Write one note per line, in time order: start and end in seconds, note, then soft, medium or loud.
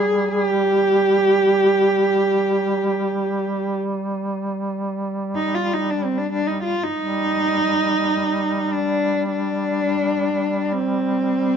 0.00 6.82 G3 soft
0.00 0.31 G#4 medium
0.31 0.43 G#4 medium
0.43 3.75 G4 medium
5.35 5.56 D#4 medium
5.55 5.75 F4 medium
5.74 5.92 D#4 medium
5.90 6.06 D4 medium
6.04 6.19 C4 medium
6.18 6.32 D4 medium
6.32 6.49 D4 medium
6.47 6.63 D#4 medium
6.63 6.85 F4 medium
6.83 8.74 D#4 medium
6.99 11.57 G3 soft
8.72 9.30 D4 medium
9.31 10.65 D4 medium
10.65 10.74 D4 medium
10.72 11.57 C4 medium